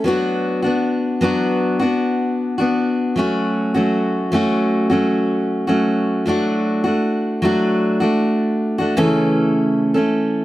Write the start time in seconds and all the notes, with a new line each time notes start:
0.04 F#3 B3 D4 F#4
0.62 B3 D4 F#4
1.21 F#3 B3 D4 F#4
1.79 B3 D4 F#4
2.58 B3 D4 F#4
3.16 F#3 A3 C#4 F#4
3.74 F#3 A3 C#4 F#4
4.32 F#3 A3 C#4 F#4
4.90 F#3 A3 C#4 F#4
5.67 F#3 A3 C#4 F#4
6.26 F#3 A3 D4 F#4
6.84 A3 D4 F#4
7.42 F#3 A3 D4 F#4
8.00 A3 D4 F#4
8.78 A3 D4 F#4
8.97 C#3 E3 A3 C#4 A4
9.94 A3 C#4 A4